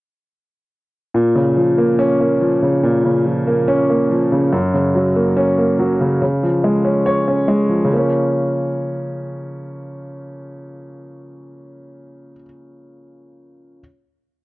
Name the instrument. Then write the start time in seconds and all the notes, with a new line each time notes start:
grand piano
1.14 A#2
1.36 C#3
1.57 F3
1.78 A#3
1.99 C#4
2.20 A#3
2.41 F3
2.62 C#3
2.83 A#2
3.05 C#3
3.26 F3
3.47 A#3
3.68 C#4
3.90 A#3
4.11 F3
4.32 C#3
4.53 F#2
4.74 C#3
4.95 F#3
5.16 A#3
5.37 C#4
5.58 A#3
5.79 F#3
6.01 C#3
6.22 C#3
6.43 F3
6.64 G#3
6.85 C#4
7.06 C#5
7.28 C#4
7.48 G#3
7.69 F3
7.85 C#3
7.89 F3
7.93 A#3 C#4